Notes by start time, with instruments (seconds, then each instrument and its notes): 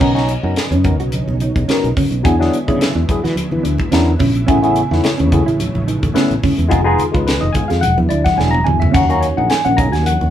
0.00 fretless electric bass B1, analog synth pad C#3 F#3 B3 C#4 D#4, tine electric piano B3 C#4 D#4 A#4 D#5, clean electric guitar C#4, kick, crash
0.14 tine electric piano F#3 B3 C#4 D#4 F#4, snare, closed hi-hat
0.29 closed hi-hat
0.43 fretless electric bass F#2, tine electric piano F#3 B3 C#4 D#4 A#4, clean electric guitar D#4
0.56 tine electric piano B4, muted fretless electric bass stroke, snare, closed hi-hat
0.71 fretless electric bass F#2, clean electric guitar C#4, tine electric piano D#4 A#4, closed hi-hat
0.84 tine electric piano F#3 B3 C#4 D#4 A#4, kick, closed hi-hat, low conga
0.99 fretless electric bass B1, tine electric piano D#4 F#4, clean electric guitar F#4, closed hi-hat
1.12 closed hi-hat, high conga
1.28 fretless electric bass B1, high conga
1.40 tine electric piano D#4 C#5, clean electric guitar D#4, closed hi-hat
1.56 fretless electric bass B1, tine electric piano D#4 G#4, kick, closed hi-hat, high conga
1.68 tine electric piano F#3 B3 C#4 D#4 A#4, clean electric guitar C#4, muted fretless electric bass stroke, snare, closed hi-hat
1.84 fretless electric bass B1, closed hi-hat
1.96 clean electric guitar C#4, tine electric piano D#4 A#4, kick, open hi-hat, low conga
2.11 fretless electric bass B1, closed hi-hat
2.23 fretless electric bass E2, analog synth pad D3 G#3 E4, tine electric piano F#3 B3 D4 E4 G#4 G#5, clean electric guitar D4, kick, closed hi-hat
2.39 tine electric piano F#3 B3 D4 E4 G#4, snare
2.53 closed hi-hat
2.67 fretless electric bass C#3, tine electric piano F#3 B3 D4 E4 G#4, clean electric guitar E4, kick, closed hi-hat
2.80 tine electric piano E5, snare, closed hi-hat
2.95 fretless electric bass E2, clean electric guitar D4, tine electric piano E4 G#4
3.09 tine electric piano F#3 B3 D4 E4 G#4, kick, closed hi-hat, low conga
3.24 fretless electric bass E3, clean electric guitar F#4, snare, closed hi-hat
3.36 closed hi-hat, high conga
3.51 fretless electric bass E3, high conga
3.63 fretless electric bass D2, clean electric guitar D4, tine electric piano E4 F#4, closed hi-hat
3.78 tine electric piano E4 G#4, kick, closed hi-hat, high conga
3.92 fretless electric bass E2, tine electric piano F#3 B3 D4 E4 A#4, clean electric guitar C#4, snare, closed hi-hat
4.19 fretless electric bass A#1, clean electric guitar C#4, tine electric piano G#4, kick, open hi-hat, low conga
4.35 closed hi-hat
4.47 fretless electric bass A1, analog synth pad C#3 G#3 A3, tine electric piano A3 B3 C#4 E4 G#4 G#5, clean electric guitar C#4, kick, closed hi-hat
4.62 tine electric piano A3 B3 C#4 E4 G#4, closed hi-hat
4.76 closed hi-hat
4.91 fretless electric bass E2, tine electric piano A3 B3 C#4 E4 B4, clean electric guitar D#4, snare
5.03 tine electric piano C#5, snare, closed hi-hat
5.18 fretless electric bass E2, clean electric guitar C#4, tine electric piano E4 F#4, closed hi-hat
5.32 tine electric piano A3 B3 C#4 E4 G#4, kick, closed hi-hat, low conga
5.46 fretless electric bass A1, clean electric guitar E4, tine electric piano E4, closed hi-hat
5.60 closed hi-hat, high conga
5.75 fretless electric bass A1, high conga
5.87 clean electric guitar D#4, tine electric piano E4 B4, closed hi-hat
6.01 fretless electric bass A1, tine electric piano E4 A4, kick, closed hi-hat, high conga
6.14 tine electric piano A3 B3 C#4 E4 B4, clean electric guitar C#4, muted fretless electric bass stroke, snare, closed hi-hat
6.31 fretless electric bass A1, closed hi-hat
6.42 clean electric guitar C#4, tine electric piano E4 A4, kick, open hi-hat, low conga
6.58 fretless electric bass E2, closed hi-hat
6.68 fretless electric bass F1, analog synth pad D#3 F3 F4, tine electric piano G#3 B3 D#4 F4 G#4, clean electric guitar D#4, kick, closed hi-hat
6.84 tine electric piano G#3 B3 D#4 F4 G#4
6.99 closed hi-hat, low conga
7.12 fretless electric bass C#2, tine electric piano G#3 B3 D#4 F4 B4, clean electric guitar F4, kick, closed hi-hat
7.27 tine electric piano B4, snare, closed hi-hat
7.41 fretless electric bass F1, clean electric guitar D#4, tine electric piano F4 G#4 D#5
7.53 tine electric piano G#3 B3 D#4 F4 G#4 G#5, kick, closed hi-hat, low conga
7.68 fretless electric bass F2, tine electric piano F4 G#4 F5, clean electric guitar G#4, snare, closed hi-hat
7.81 fretless electric bass E1, analog synth pad D3 F#3 E4, tine electric piano F#5, closed hi-hat, high conga
7.97 fretless electric bass E2, tine electric piano B4, high conga
8.09 fretless electric bass D2, clean electric guitar E4, tine electric piano E4 G#4 D5, closed hi-hat
8.24 tine electric piano E4 G#4 F#5, kick, snare, closed hi-hat, high conga
8.38 fretless electric bass E1, tine electric piano F#3 B3 D4 E4 G#4 G#5, clean electric guitar D4, snare
8.51 tine electric piano A#5, high tom, high conga
8.64 fretless electric bass E2, clean electric guitar D4, tine electric piano E4 A#4 G#5, mid tom, low conga
8.80 tine electric piano E5, floor tom, low conga
8.92 fretless electric bass D#2, analog synth pad D#3 A#3 C#4 F#4, tine electric piano F#3 A#3 C#4 F#5, clean electric guitar C#4, kick, closed hi-hat, splash
8.96 tine electric piano D#4 F#4
9.09 tine electric piano F#3 A#3 C#4 D#4 F#4 A#4, closed hi-hat
9.21 tine electric piano C#5, closed hi-hat
9.37 fretless electric bass A#1, tine electric piano F#3 A#3 C#4 D#4 G#4 F#5, clean electric guitar D#4
9.50 tine electric piano G#5, snare, closed hi-hat
9.65 fretless electric bass A#1, clean electric guitar C#4, tine electric piano D#4 F#4 F#5, closed hi-hat
9.77 tine electric piano F#3 A#3 C#4 D#4 G#4 A#5, kick, closed hi-hat, low conga
9.92 fretless electric bass D#2, tine electric piano D#4 F#4 G#5, clean electric guitar F#4, snare, closed hi-hat
10.06 tine electric piano F#5, closed hi-hat, high conga
10.21 fretless electric bass D#2, high conga